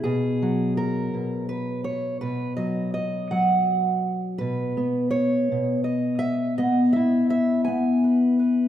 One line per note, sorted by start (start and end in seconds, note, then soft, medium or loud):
0.04 1.13 B2 medium
0.04 0.77 G#4 medium
0.42 2.57 F#3 medium
0.77 1.48 A#4 medium
1.14 2.22 B2 medium
1.49 1.84 B4 medium
1.84 2.21 C#5 medium
2.21 4.40 B2 medium
2.21 2.56 B4 medium
2.57 3.30 F#3 medium
2.57 2.93 D#5 medium
2.94 4.04 D#5 medium
3.31 4.37 F#3 medium
3.31 4.13 F#5 medium
4.38 5.51 B2 medium
4.38 5.10 B4 medium
4.77 6.59 B3 medium
5.11 5.84 C#5 medium
5.52 8.68 B2 medium
5.84 6.57 D#5 medium
6.19 6.57 E5 medium
6.58 7.67 B3 medium
6.58 7.67 D#5 medium
6.93 8.68 E4 medium
6.93 7.29 E5 medium
7.30 7.64 E5 medium
7.65 8.68 B3 medium
7.65 8.68 G#5 medium
8.04 8.39 B4 soft
8.39 8.68 B4 soft